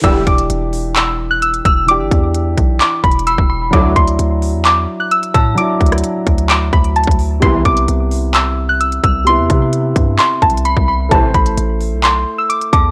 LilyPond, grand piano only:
\new Staff \with { instrumentName = "Grand piano" } { \time 4/4 \key e \minor \tempo 4 = 130 <e d' g'>1 | <e d' g'>1 | <fis d' e'>1 | <fis d' e'>1 |
<c b e'>1 | <c b e'>1 | <a e' c''>1 | }